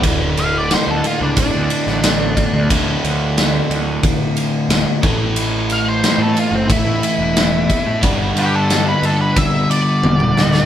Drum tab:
RD |x-x-x-x-x-x-x-x-|x-x-x-x-x-x-x-x-|x-x-x-x-x-x-x-x-|x-x-x-x-x-x-----|
SD |----o------oo---|----o-------o---|----o-------o---|----o---------oo|
T1 |----------------|----------------|----------------|------------o---|
T2 |----------------|----------------|----------------|-------------o--|
BD |o-------o-----o-|o-------o-----o-|--------o-----o-|o-------o-------|